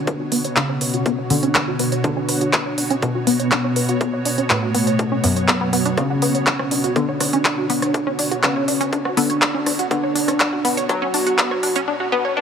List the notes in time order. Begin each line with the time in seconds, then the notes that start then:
Already playing: B2 D3 B3 D4 F#4 C#5
0.07 B4, kick, closed hi-hat
0.20 F#4
0.32 B3, open hi-hat
0.45 C#5, closed hi-hat
0.56 C#3 C#4 D4, kick, clap, closed hi-hat
0.69 C#4
0.81 B4, open hi-hat
0.94 F#4, closed hi-hat
1.06 B3, kick, closed hi-hat
1.18 C#5
1.30 D3 D4, open hi-hat
1.43 C#4, closed hi-hat
1.55 B4, kick, clap, closed hi-hat
1.68 F#4
1.79 B3, open hi-hat
1.92 C#5, closed hi-hat
2.04 D3 D4, kick, closed hi-hat
2.17 C#4
2.29 B4, open hi-hat
2.41 F#4, closed hi-hat
2.53 B3, kick, clap, closed hi-hat
2.66 C#5
2.78 D4, open hi-hat
2.90 C#4, closed hi-hat
3.02 B2 B3 B4, kick, closed hi-hat
3.15 F#4
3.27 B3, open hi-hat
3.40 C#5, closed hi-hat
3.51 D4, kick, clap, closed hi-hat
3.64 C#4
3.76 B4, open hi-hat
3.89 F#4, closed hi-hat
4.01 B3, kick, closed hi-hat
4.13 C#5
4.25 D4, open hi-hat
4.38 C#4, closed hi-hat
4.50 A2 A3 B4, kick, clap, closed hi-hat
4.63 F#4
4.74 B3, open hi-hat
4.87 C#5, closed hi-hat
4.99 D4, kick, closed hi-hat
5.12 C#4
5.24 F#2 F#3 B3, open hi-hat
5.36 C#5, closed hi-hat
5.48 B3, kick, clap, closed hi-hat
5.61 B3
5.73 B3, open hi-hat
5.85 D4, closed hi-hat
5.97 C#3 C#4 D4, kick, cross-stick, closed hi-hat
6.10 F#4
6.22 B3, open hi-hat
6.35 C#5, closed hi-hat
6.47 D4, kick, clap, closed hi-hat
6.59 C#4, cross-stick
6.71 D4, open hi-hat
6.84 F#4, closed hi-hat
6.96 D3 B3 D4, kick, closed hi-hat
7.09 C#5
7.20 D4, cross-stick, open hi-hat
7.33 C#4, closed hi-hat
7.45 D4, kick, clap, closed hi-hat
7.58 F#4
7.70 B3, open hi-hat
7.82 C#5, cross-stick, closed hi-hat
7.94 D4, kick, closed hi-hat
8.07 C#4
8.19 D4, open hi-hat
8.31 F#4, closed hi-hat
8.43 C#3 B3 C#4, kick, cross-stick, clap, closed hi-hat
8.56 C#5
8.68 D4, open hi-hat
8.81 C#4, closed hi-hat
8.93 D4, kick, closed hi-hat
9.05 F#4, cross-stick
9.17 D3 B3 D4, open hi-hat
9.30 C#5, closed hi-hat
9.42 D4, kick, clap, closed hi-hat
9.54 C#4
9.66 D4, cross-stick, open hi-hat
9.79 F#4, closed hi-hat
9.91 D3 B3 D4, kick, closed hi-hat
10.03 C#5
10.15 D4, open hi-hat
10.28 C#4, cross-stick, closed hi-hat
10.40 D4, kick, clap, closed hi-hat
10.53 F#4
10.65 B3, open hi-hat
10.77 C#5, closed hi-hat
10.89 F#3 D4 F#4, kick, cross-stick, closed hi-hat
11.02 C#4
11.14 D4, open hi-hat
11.27 F#4, closed hi-hat
11.38 B3, kick, clap, closed hi-hat
11.51 C#5, cross-stick
11.63 D4, open hi-hat
11.76 C#4, closed hi-hat
11.88 D4
12.00 F#4
12.12 B3
12.25 C#5
12.37 D4